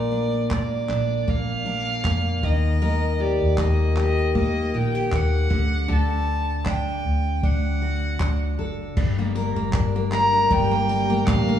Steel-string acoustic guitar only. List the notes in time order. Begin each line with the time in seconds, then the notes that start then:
Already playing: A#2 A#3 D4 A#4
0.12 D4
0.50 A#3
0.89 D4
1.28 A#3
1.66 D4
2.05 A#3
2.43 D#3
2.82 D#3 A#4
3.20 G4
3.58 A#3
3.97 G4
4.35 A#3
4.74 F4
4.95 G4
5.11 A#3
5.50 D3
5.88 D3 A4
6.66 D4
7.43 D4
7.82 F#4
8.20 D4
8.59 A4
8.97 G2
9.19 A#3
9.35 A#4
9.56 A#3
9.74 D4
9.96 A#3
10.13 A#4
10.33 D4
10.51 G2
10.71 A#3
10.89 A#4
11.10 A#3
11.27 D4
11.49 A#3